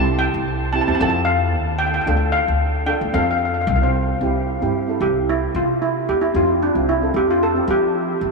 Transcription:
Already playing: upright bass C2, steel pan C4 E4 G4 A5
0.19 steel pan G5
0.34 upright bass C2
0.73 steel pan C4 E4 G4 A5
0.81 steel pan A5
0.87 upright bass E2, steel pan C4 E4 G4 A5
0.95 steel pan A5
0.99 upright bass F2, steel pan C4 F4 A4 A5
1.10 steel pan A5
1.25 steel pan F5
1.54 upright bass D#2
1.79 steel pan G5
1.87 steel pan G5
1.94 steel pan G5
2.01 steel pan G5
2.06 upright bass D2, steel pan D4 F4 A4 G5
2.17 steel pan G5
2.32 steel pan F5
2.48 upright bass D2
2.86 steel pan D4 F4 A4 G5
3.01 upright bass D2
3.13 upright bass F2, steel pan C4 F4 A4 F5
3.22 steel pan F5
3.31 steel pan F5
3.38 steel pan F5
3.45 steel pan F5
3.54 steel pan F5
3.61 steel pan F5
3.67 upright bass C2, steel pan F5
3.76 steel pan F5
3.82 steel pan C4 F4 C5 F5
4.21 upright bass C2, steel pan C4 E4 G4
4.61 upright bass G2, steel pan C4 E4 G4
4.87 steel pan C4 E4 A4
5.01 upright bass C2, steel pan G4
5.29 steel pan E4
5.55 upright bass C3, steel pan F4
5.82 steel pan E4
6.09 upright bass E2, steel pan G4
6.21 steel pan E4
6.34 upright bass F2, steel pan C4 F4 G4
6.63 steel pan D4
6.75 upright bass C2, steel pan C4 F4 G4
6.89 steel pan E4
7.01 steel pan C4 F4 A4
7.14 upright bass F2, steel pan G4
7.31 steel pan F4
7.43 steel pan A4
7.55 steel pan C4 F4 G4
7.68 upright bass F3, steel pan G4
8.21 upright bass A1

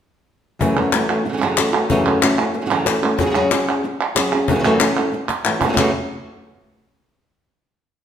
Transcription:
0.60 nylon-string guitar F#2 C#3 E3 A3 C#4 F#4, cajon bass
0.76 nylon-string guitar E3 A3 C#4 F#4
0.93 nylon-string guitar E3 A3 C#4 F#4, cajon slap, clap
1.09 nylon-string guitar E3 A3 C#4 F#4, cajon slap, clap
1.26 nylon-string guitar C#3 A3 C#4 F#4, muted nylon-string guitar stroke
1.33 nylon-string guitar C#3 E3 A3 C#4 F#4
1.37 nylon-string guitar C#3 E3 A3 C#4 F#4
1.42 nylon-string guitar F#2 C#3 E3 A3 C#4 F#4, clap
1.57 nylon-string guitar E3 A3 C#4 F#4, cajon slap, clap
1.73 nylon-string guitar E3 A3 C#4 F#4, clap
1.89 nylon-string guitar F#2 C#3 E3 A3 C#4 F#4, cajon bass
2.06 nylon-string guitar E3 A3 C#4 F#4, cajon slap
2.22 nylon-string guitar E3 A3 C#4 F#4, cajon slap, clap
2.38 nylon-string guitar E3 A3 C#4 F#4, cajon slap, clap
2.54 muted nylon-string guitar stroke
2.61 nylon-string guitar C#3 E3 A3 C#4 F#4
2.66 nylon-string guitar C#3 E3 A3 C#4 F#4
2.70 nylon-string guitar F#2 C#3 E3 A3 C#4 F#4, clap
2.85 nylon-string guitar E3 A3 C#4 F#4, cajon slap, clap
3.02 nylon-string guitar E3 A3 C#4 F#4, clap
3.19 nylon-string guitar C#3 F#3 C#4 F#4 G#4, cajon bass, cajon slap
3.26 nylon-string guitar F#3 C#4 F#4 G#4
3.30 nylon-string guitar F#3 C#4 F#4
3.35 nylon-string guitar C#3 F#3 C#4 F#4 G#4, cajon slap
3.51 nylon-string guitar F#3 C#4 F#4 G#4, cajon slap, clap
3.67 nylon-string guitar C#4 F#4 G#4, clap
3.84 muted nylon-string guitar stroke
4.01 clap
4.15 nylon-string guitar F#3 C#4 F#4 G#4, cajon slap, clap
4.32 nylon-string guitar C#4 F#4 G#4, clap
4.48 nylon-string guitar F#2 C#3 E3 A3 C#4 F#4, cajon bass
4.55 nylon-string guitar C#3 E3 A3 C#4 F#4
4.59 nylon-string guitar C#3 E3 A3 C#4
4.64 nylon-string guitar F#2 C#3 E3 A3 C#4 F#4
4.80 nylon-string guitar E3 A3 C#4 F#4, cajon slap, clap
4.96 nylon-string guitar E3 A3 C#4 F#4, cajon slap, clap
5.13 muted nylon-string guitar stroke
5.29 cajon slap, clap
5.45 nylon-string guitar E3 A3 C#4 F#4, clap
5.61 nylon-string guitar C#3 E3 C#4 F#4, cajon bass, clap
5.65 nylon-string guitar C#3 A3 C#4 F#4
5.69 nylon-string guitar E3 A3 C#4 F#4
5.74 nylon-string guitar C#3 E3 A3 C#4 F#4, cajon bass, clap
5.78 nylon-string guitar F#2 C#3 E3 A3 C#4 F#4

